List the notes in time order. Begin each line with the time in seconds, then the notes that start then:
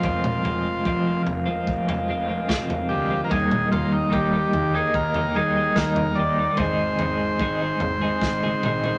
Already playing: F4 F5
0.02 F1 F2 C3 F3 G#3 C4 F4 A#4, kick, floor tom
0.24 mid tom
0.44 F1 F3 G#3 C4 F4, floor tom
0.85 F1 F2 C3 F3 G#3 C4 F4, kick
1.06 F3 G#3 C4 F4
1.26 F1, muted clean electric guitar stroke, floor tom
1.46 F3 G#3 C4 F4
1.67 F1, kick
1.88 F3 G#3 C4 F4, floor tom
2.08 F1 F3 G#3 C4 F4
2.28 F3 G#3 C4 F4
2.48 F1 F2 C3 F3 G#3 C4 F4, kick, snare
2.70 floor tom
2.89 D2 F3 G#3 C4 F4 G4
3.10 F3 G#3 C4 F4
3.24 A#4
3.29 D#2 D#3 G3 A#3 D#4 G4 G#4 G5 A#5, kick, floor tom
3.52 mid tom
3.70 D#2 G3 A#3 D#4 F4 G4, floor tom
3.93 D#4
4.10 D#2 D#3 G3 A#3 D#4 G4, kick
4.32 A#3 D#4 G4
4.53 D#2, muted clean electric guitar stroke, floor tom
4.74 A#3 D#4 G4 G#4
4.94 D#2 A#4, kick
5.14 A#3 D#4 G4, floor tom
5.35 D#2 G3 A#3 D#4 G4 G#4
5.56 A#3 D#4 G4
5.75 D#2 D#3 G3 A#3 D#4 G4 A#4, kick, snare
5.96 floor tom
6.15 D#2 G3 A#3 D#4 G4 D5
6.38 A#3 D#4 G4
6.57 G#1 G#2 D#3 G#3 C4 D#4 G#4 C5 C6, kick, floor tom
6.99 G#1 G#3 C4 D#4 G#4, floor tom
7.40 G#1 G#2 D#3 G#3 C4 D#4 G#4, kick
7.61 G#3 C4 D#4 G#4
7.80 G#1, muted clean electric guitar stroke, floor tom
8.01 G#3 C4 D#4 G#4
8.22 G#1, kick, snare
8.43 G#3 C4 D#4 G#4, high tom
8.63 G#1 G#3 C4 D#4 G#4, mid tom
8.84 G#3 C4 D#4 G#4, mid tom